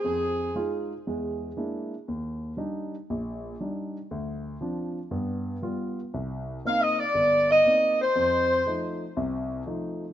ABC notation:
X:1
M:4/4
L:1/8
Q:"Swing" 1/4=118
K:Fmix
V:1 name="Saxophone section"
_A3 z4 z | z8 | z8 | z2 (3f e d- d e2 c- |
c3 z4 z |]
V:2 name="Grand piano"
F,,2 [_A,EF] z [=E,,^G,]2 [G,^A,D=E] z | E,,2 [G,DE] z B,,,2 [G,DE] z | D,,2 [F,CD] z [G,,=B,]2 [G,B,F] z | C,,2 [B,CE] z G,,,2 [B,CE] z |
F,,2 [F,A,E] z [C,,C,]2 [F,A,E] z |]